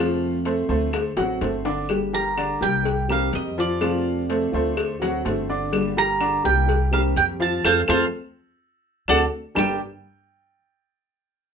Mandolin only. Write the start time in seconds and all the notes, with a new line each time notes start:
2.15 A#5
2.63 G5
3.12 F5
3.35 D#5
3.60 D5
5.98 A#5
6.45 G5
6.93 F5
7.17 G5
7.42 A5
7.65 C5 F5 A5
7.89 C5 F5 A5
9.09 D5 F#5 A5
9.59 G5